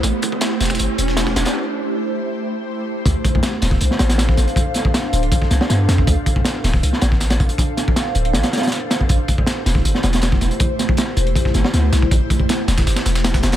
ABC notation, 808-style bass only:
X:1
M:4/4
L:1/8
Q:1/4=159
K:Dm
V:1 name="808-style bass" clef=bass
A,,, z2 E,,, G,,, E,,,2 E,,, | z8 | D,, z2 D,,, C,, A,,,2 A,,, | z3 D,,, z C,, G,, F,, |
D,, z2 D,,, C,, A,,,2 A,,, | z3 D,,, A,,, z3 | A,,, z2 E,,, G,,, E,,,2 E,,, | z3 E,,, z G,,, D,, C,, |
A,,, z2 E,,, G,,, E,,,2 E,,, |]